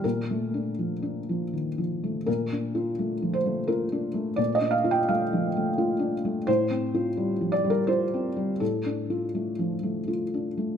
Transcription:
<<
  \new Staff \with { instrumentName = "Felt piano" } { \time 3/4 \key bes \major \tempo 4 = 83 bes'2 r4 | bes'4. c''8 bes'4 | d''16 ees''16 f''16 g''16 f''4. r8 | c''4. d''16 bes'16 c''4 |
a'2 r4 | }
  \new Staff \with { instrumentName = "Felt piano" } { \time 3/4 \key bes \major \tuplet 3/2 { bes,8 a8 d'8 f8 d'8 f8 ees8 f8 a8 } | \tuplet 3/2 { bes,8 d'8 f'8 a8 f8 a8 f'8 d'8 a8 } | \tuplet 3/2 { bes,8 d'8 f'8 a8 f8 a8 f'8 d'8 a8 } | \tuplet 3/2 { a,8 c'8 f'8 g8 f8 g8 f'8 c'8 g8 } |
\tuplet 3/2 { a,8 d'8 f'8 a8 f8 a8 f'8 d'8 a8 } | }
>>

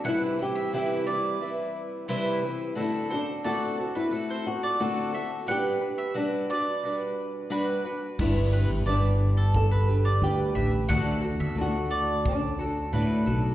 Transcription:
<<
  \new Staff \with { instrumentName = "Mandolin" } { \time 4/4 \key g \major \tempo 4 = 88 fis''16 r8 e''16 r8 d''4 r8 c''8. r16 | r8 c''16 r16 d''16 r8 b'16 r16 c''16 r16 d''16 r8 e''16 r16 | fis''16 r8 e''16 r8 d''4 r8 b'8. r16 | r8 b'16 r16 d''16 r8 a'16 r16 b'16 r16 d''16 r8 e''16 r16 |
fis''16 r8 e''16 r8 d''4 r8 b'8. r16 | }
  \new Staff \with { instrumentName = "Nylon-string guitar" } { \time 4/4 \key g \major e'8 g'8 g'4 r2 | e'8 d'8 fis'8. e'8. fis'8 fis'4 | g'4 d'2~ d'8 r8 | e'4 d'4 a'4 g'4 |
fis'4 fis'4 d'4. r8 | }
  \new Staff \with { instrumentName = "Twelve-string acoustic guitar" } { \time 4/4 \key g \major <c e g c' e' b'>8 <g c' e' b'>8 <c e g c' e' b'>8 <g c' e' b'>8 <g c' e' b'>4 <c e g c' e' b'>8 <g c' e' b'>8 | <d a c' fis' a'>8 <c' fis' a'>8 <d a c' fis' a'>8 <c' fis' a'>8 <a c' fis' a'>4 <d a c' fis' a'>8 <c' fis' a'>8 | <g d' b'>8 <d' b'>8 <g d' fis' b'>8 <d' fis' b'>8 <g d' fis' b'>4 <g d' fis' b'>8 <d' fis' b'>8 | <g d' g' b'>8 <d' g' b'>8 <g d' g' b'>4. <d' g' b'>8 <g d' g' b'>8 <d' g' b'>8 |
<d a d' fis' a'>8 <d' fis' a'>8 <a d' fis' a'>4. <d' fis' a'>8 <a d' fis' a'>8 <d' fis' a'>8 | }
  \new Staff \with { instrumentName = "Fretless electric bass" } { \clef bass \time 4/4 \key g \major r1 | r1 | r1 | g,,8. g,,16 g,,2 d,8 a,,8 |
d,8. d,16 d,2 a,8 b,,8 | }
  \new DrumStaff \with { instrumentName = "Drums" } \drummode { \time 4/4 r4 r4 r4 r4 | r4 r4 r4 r4 | r4 r4 r4 r4 | <cymc bd>4 r4 bd4 r4 |
bd4 r4 bd4 r4 | }
>>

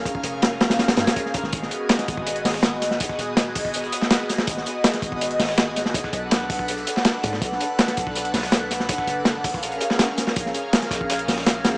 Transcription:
<<
  \new Staff \with { instrumentName = "808-style bass" } { \clef bass \time 4/4 \key gis \dorian \tempo 4 = 163 r8 eis,,4 ais,,4 g,16 r4 gis,,16 | gis,,8 r4 gis,,4 gis,,4. | r8 dis,,4 gis,,4 r4. | gis,,8 r4 gis,,4 gis,,4. |
r8 b,,4 b,,4 r4 gis,8 | b,,8 r4 b,,4 b,,4. | r8 fis,,4 ais,,4 r4. | ais,,8 r4 ais,,4 ais,,4. | }
  \new DrumStaff \with { instrumentName = "Drums" } \drummode { \time 4/4 <hh bd>16 bd16 hh8 <hh sn>8 <hh sn>16 <hh sn>16 <hh sn>16 <hh sn>16 <hh sn>16 <hh sn>16 <hh bd>16 sn16 <hh bd>16 sn16 | <hh bd tamb>16 sn16 <hh tamb>8 <hh sn tamb>16 <hh sn>16 <hh bd tamb>16 bd16 <hh tamb>16 hh16 <hho sn tamb>16 sn16 <hh sn tamb>8 <hh sn tamb>16 sn16 | <hh bd tamb>16 <bd sn>16 <hh tamb>8 <hh sn tamb>8 <hh hho bd>16 bd16 <hh tamb>16 hh16 <hh tamb>16 sn16 <hh sn tamb>16 sn16 <hh sn tamb>16 sn16 | <hh bd tamb>16 sn16 <hh tamb>8 <hh sn tamb>16 <hh sn>16 <hh bd tamb>16 bd16 <hh tamb>16 hh16 <hho sn tamb>16 sn16 <hh sn tamb>8 <hh sn tamb>16 sn16 |
<hh bd tamb>16 <bd sn>16 <hh tamb>8 <hh sn tamb>8 <hh hho bd>16 bd16 <hh tamb>16 hh16 <hh tamb>16 sn16 <hh sn tamb>16 sn16 <hh bd tamb>16 sn16 | <hh bd tamb>16 sn16 <hh tamb>8 <hh sn tamb>16 <hh sn>16 <hh bd tamb>16 bd16 <hh tamb>16 hh16 <hho sn tamb>16 sn16 <hh sn tamb>8 <hh sn tamb>16 sn16 | <hh bd tamb>16 <bd sn>16 <hh tamb>8 <hh sn tamb>8 <hh hho bd>16 bd16 <hh tamb>16 hh16 <hh tamb>16 sn16 <hh sn tamb>16 sn16 <hh sn tamb>16 sn16 | <hh bd tamb>16 sn16 <hh tamb>8 <hh sn tamb>16 <hh sn>16 <hh bd sn tamb>16 bd16 <hh sn tamb>16 hh16 <hho sn tamb>16 sn16 <hh sn tamb>8 <hh sn tamb>16 sn16 | }
>>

